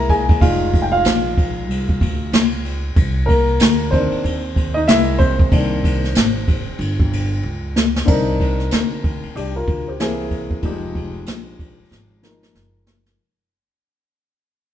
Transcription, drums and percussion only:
0.09 kick, ride
0.29 kick, ride
0.41 kick, ride
0.74 kick, ride
1.05 snare, hi-hat pedal, ride
1.38 kick, ride
1.70 ride
1.89 kick
2.01 kick, ride
2.33 snare, hi-hat pedal, ride
2.65 ride
2.96 kick, ride
3.29 kick, ride
3.47 ride
3.60 snare, hi-hat pedal, ride
3.93 kick, ride
4.11 ride
4.25 ride
4.56 kick, ride
4.78 ride
4.88 snare, hi-hat pedal, ride
5.20 kick, ride
5.39 kick
5.52 kick, ride
5.84 kick, snare, ride
6.04 snare
6.15 snare, hi-hat pedal, ride
6.48 kick, ride
6.81 ride
7.00 kick
7.13 ride
7.76 snare
7.96 snare
8.08 kick, crash
8.40 kick, ride
8.60 snare
8.71 snare, hi-hat pedal, ride
9.04 kick, ride
9.23 ride
9.37 ride
9.68 kick, ride
10.00 snare, hi-hat pedal, ride
10.31 kick, ride
10.51 kick
10.62 kick, ride
10.95 kick, ride
11.14 ride
11.26 snare, hi-hat pedal, ride
11.59 kick, ride
11.92 snare
12.23 snare
12.43 snare
12.55 snare
12.87 snare
13.06 snare

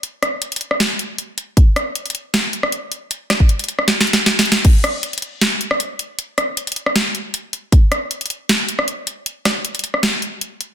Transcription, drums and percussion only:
0.03 closed hi-hat
0.23 cross-stick, closed hi-hat
0.42 closed hi-hat
0.52 closed hi-hat
0.56 closed hi-hat
0.61 closed hi-hat
0.71 cross-stick
0.80 snare, closed hi-hat
0.99 closed hi-hat
1.18 closed hi-hat
1.38 closed hi-hat
1.57 kick, closed hi-hat
1.76 cross-stick, closed hi-hat
1.95 closed hi-hat
2.06 closed hi-hat
2.10 closed hi-hat
2.15 closed hi-hat
2.34 snare, closed hi-hat
2.53 closed hi-hat
2.63 cross-stick
2.72 closed hi-hat
2.92 closed hi-hat
3.11 closed hi-hat
3.30 cross-stick, snare, closed hi-hat
3.40 kick
3.49 closed hi-hat
3.59 closed hi-hat
3.64 closed hi-hat
3.69 closed hi-hat
3.79 cross-stick
3.88 snare, closed hi-hat
4.01 snare
4.07 closed hi-hat
4.13 snare
4.26 snare, closed hi-hat
4.39 snare
4.45 closed hi-hat
4.52 snare
4.65 kick, closed hi-hat, crash
4.84 cross-stick, closed hi-hat
5.03 closed hi-hat
5.13 closed hi-hat
5.18 closed hi-hat
5.22 closed hi-hat
5.41 snare, closed hi-hat
5.61 closed hi-hat
5.71 cross-stick
5.80 closed hi-hat
5.99 closed hi-hat
6.19 closed hi-hat
6.38 cross-stick, closed hi-hat
6.57 closed hi-hat
6.67 closed hi-hat
6.72 closed hi-hat
6.76 closed hi-hat
6.86 cross-stick
6.96 snare, closed hi-hat
7.15 closed hi-hat
7.34 closed hi-hat
7.53 closed hi-hat
7.72 kick, closed hi-hat
7.92 cross-stick, closed hi-hat
8.11 closed hi-hat
8.21 closed hi-hat
8.26 closed hi-hat
8.30 closed hi-hat
8.49 snare, closed hi-hat
8.69 closed hi-hat
8.79 cross-stick
8.88 closed hi-hat
9.07 closed hi-hat
9.26 closed hi-hat
9.45 cross-stick, snare, closed hi-hat
9.65 closed hi-hat
9.75 closed hi-hat
9.79 closed hi-hat
9.84 closed hi-hat
9.94 cross-stick
10.03 snare, closed hi-hat
10.22 closed hi-hat
10.41 closed hi-hat
10.61 closed hi-hat

